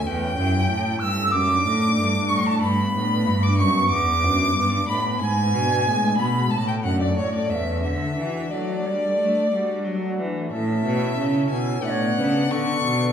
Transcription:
0.04 0.36 E2 medium
0.04 0.34 E2 soft
0.04 1.00 G5 medium
0.04 1.01 G5 medium
0.22 0.47 C#4 soft
0.37 0.69 F#2 medium
0.37 0.66 F#2 medium
0.37 0.63 E4 medium
0.54 0.79 C#4 soft
0.69 0.98 A2 medium
0.69 1.01 A2 medium
0.69 0.95 A3 soft
0.86 1.11 E4 soft
0.99 1.30 G2 soft
0.99 1.36 G2 medium
0.99 1.27 C#4 soft
0.99 1.32 E6 medium
0.99 1.04 F#6 medium
1.03 1.33 E6 medium
1.18 1.34 A3 soft
1.32 1.62 F#2 medium
1.32 1.66 F#2 medium
1.32 2.01 D6 loud
1.32 2.31 D6 loud
1.50 1.76 D4 soft
1.66 1.95 A2 medium
1.66 1.97 A2 medium
1.66 1.92 A3 soft
1.83 2.08 D4 medium
1.98 2.27 G2 medium
1.98 2.30 G2 medium
1.98 2.24 A3 medium
2.14 2.40 D4 soft
2.29 2.59 A2 medium
2.29 2.62 A2 medium
2.29 2.56 A3 soft
2.29 2.48 C#6 medium
2.29 2.36 C#6 medium
2.46 2.63 D4 soft
2.46 2.61 A5 medium
2.62 2.94 G2 medium
2.62 2.92 G2 medium
2.62 3.44 B5 medium
2.62 3.46 B5 medium
2.79 3.05 B3 soft
2.95 3.28 A2 medium
2.95 3.24 A2 medium
2.95 3.21 D4 medium
3.11 3.37 B3 soft
3.26 3.61 G2 medium
3.26 3.55 G2 medium
3.43 3.69 D4 soft
3.43 3.57 D6 medium
3.43 3.62 D6 medium
3.58 3.90 F#2 medium
3.58 3.89 F#2 medium
3.58 3.85 B3 soft
3.58 3.89 C#6 medium
3.58 3.94 C#6 medium
3.89 4.26 E2 medium
3.89 4.21 E2 medium
3.89 4.86 D6 loud
3.89 4.91 D6 loud
4.09 4.34 B3 soft
4.24 4.53 F#2 medium
4.24 4.56 F#2 medium
4.24 4.50 D4 medium
4.41 4.66 B3 medium
4.57 4.88 G2 medium
4.57 4.86 G2 medium
4.74 4.99 D4 soft
4.88 5.23 A2 medium
4.88 5.19 A2 medium
4.88 5.16 B3 soft
4.88 5.19 B5 medium
4.88 5.21 B5 medium
5.20 5.55 G#2 medium
5.20 5.50 G#2 medium
5.20 6.16 G#5 loud
5.20 6.21 G#5 medium
5.38 5.63 B3 soft
5.54 5.88 B2 medium
5.54 5.83 B2 medium
5.54 5.80 D4 soft
5.70 5.96 B3 soft
5.86 6.18 A2 medium
5.86 6.16 A2 medium
5.86 6.12 G#3 soft
6.03 6.28 D4 soft
6.17 6.51 B2 medium
6.17 6.49 B2 soft
6.17 6.45 B3 soft
6.17 6.52 B5 medium
6.17 6.51 B5 medium
6.35 6.51 G#3 soft
6.50 6.86 A2 medium
6.50 6.81 A2 medium
6.50 6.67 A5 medium
6.50 6.68 A5 medium
6.68 6.94 A3 soft
6.68 6.74 G5 medium
6.68 6.84 G5 medium
6.83 7.17 F#2 medium
6.83 7.15 F#2 soft
6.83 7.11 D4 soft
6.83 6.99 F#5 medium
6.83 7.03 F#5 medium
7.00 7.18 A3 soft
7.00 7.16 D5 medium
7.00 7.18 D5 medium
7.17 7.52 A2 medium
7.17 7.48 A2 soft
7.17 7.33 C#5 medium
7.17 7.36 C#5 medium
7.35 7.61 A3 soft
7.35 7.51 D5 medium
7.35 7.50 D5 medium
7.50 7.87 E2 medium
7.50 7.82 E2 medium
7.50 7.79 C#4 soft
7.50 7.82 E5 medium
7.50 7.57 F#5 medium
7.56 7.84 E5 medium
7.69 7.85 A3 soft
7.83 8.17 D3 medium
7.83 8.15 D3 soft
7.83 8.53 E5 medium
7.83 8.28 E5 medium
8.03 8.29 D4 soft
8.18 8.51 E3 medium
8.18 8.50 E3 medium
8.18 8.46 F#4 soft
8.37 8.63 D4 soft
8.51 8.88 F#3 medium
8.51 8.83 F#3 soft
8.51 8.80 A3 soft
8.51 10.19 D5 medium
8.51 8.70 D5 medium
8.69 8.96 F#4 soft
8.69 8.87 D5 medium
8.69 8.74 E5 medium
8.86 9.18 G3 medium
8.86 9.17 G3 soft
8.86 9.14 D4 soft
8.86 8.91 C#5 medium
8.86 10.15 D5 medium
9.04 9.19 A3 soft
9.19 9.51 A3 medium
9.19 9.36 A3 soft
9.19 9.47 D4 soft
9.38 9.54 A3 soft
9.52 9.87 G3 medium
9.52 9.83 G3 soft
9.52 9.80 F#4 soft
9.71 9.96 D4 soft
9.85 10.19 F#3 medium
9.85 10.16 F#3 soft
9.85 10.13 A3 soft
10.02 10.29 F#4 soft
10.19 10.52 E3 medium
10.19 10.50 E3 soft
10.19 10.46 D4 soft
10.36 10.53 A3 soft
10.49 10.83 A2 medium
10.49 11.78 C#4 soft
10.49 11.79 E4 soft
10.49 11.79 A4 soft
10.49 11.47 E5 medium
10.53 10.83 A2 medium
10.84 11.15 B2 medium
10.84 11.18 B2 medium
11.18 11.48 C#3 medium
11.18 11.51 C#3 medium
11.50 11.81 B2 soft
11.50 11.83 B2 medium
11.50 11.84 G#5 medium
11.78 13.10 B3 soft
11.78 13.10 D4 soft
11.78 13.11 D5 soft
11.82 12.13 A2 medium
11.82 12.16 A2 medium
11.82 11.90 E5 medium
11.82 12.53 F#5 medium
11.89 12.17 C#5 medium
12.17 12.48 C#3 medium
12.17 12.50 C#3 medium
12.17 12.50 B4 medium
12.17 12.21 C#5 medium
12.51 12.81 D3 medium
12.51 12.84 D3 medium
12.51 13.12 A4 medium
12.51 13.12 C#6 loud
12.84 13.12 B2 medium

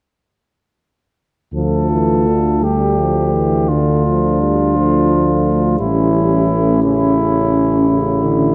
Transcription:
1.53 5.76 D2 soft
1.53 1.88 F3 soft
1.53 3.65 A3 soft
1.53 2.60 F4 soft
1.53 2.65 A4 soft
1.91 2.28 E3 soft
2.27 2.63 D3 soft
2.62 3.00 G3 soft
2.62 5.77 D4 soft
2.62 3.70 G4 soft
2.98 3.36 F3 soft
3.35 3.72 E3 soft
3.68 4.05 D3 soft
3.68 4.74 A3 soft
3.68 5.78 F4 soft
4.07 4.42 F3 soft
4.41 4.77 G3 soft
4.76 5.80 F3 soft
4.76 5.81 A3 soft
5.79 8.55 A1 soft
5.79 6.87 E3 soft
5.79 6.14 G3 soft
5.79 7.84 C#4 soft
5.79 6.82 E4 soft
6.14 6.51 G3 soft
6.49 6.84 A3 soft
6.83 7.62 C#3 soft
6.83 8.55 C#4 soft
6.83 8.55 E4 soft
7.87 8.24 C#3 soft
7.87 8.55 E4 soft
8.22 8.55 D3 soft

